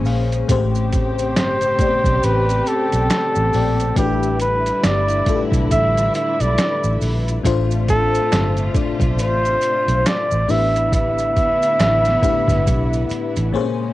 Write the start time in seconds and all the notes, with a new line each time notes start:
Already playing: A#2 C#3 G#3 A#3 C#4 G#4 C5 G#5
0.05 A#1 F5, open hi-hat, maracas
0.32 closed hi-hat, maracas
0.48 A1 A2 A3 C4 G4 C5, kick, closed hi-hat, maracas
0.75 closed hi-hat, maracas
0.92 C5, kick, closed hi-hat, maracas
1.19 closed hi-hat, maracas
1.36 G1, finger snap, snare, closed hi-hat, maracas
1.61 closed hi-hat, maracas
1.78 A2 A3 B3 G4 D5, kick, closed hi-hat, maracas
1.86 C4
2.04 B1, kick, closed hi-hat, maracas
2.23 A1 B4, closed hi-hat, maracas
2.49 closed hi-hat, maracas
2.66 A4, closed hi-hat, maracas
2.92 B1, closed hi-hat, maracas
3.10 finger snap, snare, closed hi-hat, maracas
3.35 A1, maracas
3.53 A#1 A2 A3 C4 G4 D5, open hi-hat, maracas
3.80 closed hi-hat, maracas
3.96 A1 A2 D3 G3 A3 D4 E4 F#4 G4 B4, kick, closed hi-hat, maracas
4.05 G4
4.23 closed hi-hat, maracas
4.40 B4, closed hi-hat, maracas
4.66 closed hi-hat, maracas
4.84 G1 D5, finger snap, snare, closed hi-hat, maracas
5.08 closed hi-hat, maracas
5.26 A2 A3 D4 F4 A4, kick, closed hi-hat, maracas
5.35 G4
5.52 B1, kick, closed hi-hat, maracas
5.71 A1 E5, kick, closed hi-hat, maracas
5.97 closed hi-hat, maracas
6.14 E5, closed hi-hat, maracas
6.40 B1 D5, closed hi-hat, maracas
6.58 finger snap, snare, closed hi-hat, maracas
6.84 A1, maracas
7.01 A#1, open hi-hat, maracas
7.28 closed hi-hat, maracas
7.43 A1 A2 C3 A3 D4 F4 C5, kick, closed hi-hat, maracas
7.71 closed hi-hat, maracas
7.88 A4, kick, closed hi-hat, maracas
8.15 closed hi-hat, maracas
8.32 G1, finger snap, snare, closed hi-hat, maracas
8.57 closed hi-hat, maracas
8.74 A2 A3 D4 F4 D5, kick, closed hi-hat, maracas
9.00 B1, kick, closed hi-hat, maracas
9.19 A1 C5, closed hi-hat, maracas
9.45 closed hi-hat, maracas
9.61 closed hi-hat, maracas
9.88 B1, closed hi-hat, maracas
10.06 D5, finger snap, snare, closed hi-hat, maracas
10.31 A1, maracas
10.47 A1 A2 D3 A3 B3 D4 E4 G4 B4 E5, open hi-hat, maracas
10.76 closed hi-hat, maracas
10.92 E5, kick, closed hi-hat, maracas
11.18 closed hi-hat, maracas
11.36 kick, closed hi-hat, maracas
11.62 closed hi-hat, maracas
11.80 A1, finger snap, snare, closed hi-hat, maracas
12.05 snare, closed hi-hat, maracas
12.22 A2 A3 D4 E4 G4 B4, kick, closed hi-hat, maracas
12.48 G1, kick, snare, closed hi-hat, maracas
12.67 B1, kick, closed hi-hat, maracas
12.93 closed hi-hat, maracas
13.09 muted fingered electric bass stroke, closed hi-hat, maracas
13.36 A1, closed hi-hat, maracas
13.52 A#2 C#3 G#3 A#3 C4 C#4 G#4 C5 C#5
13.61 C#4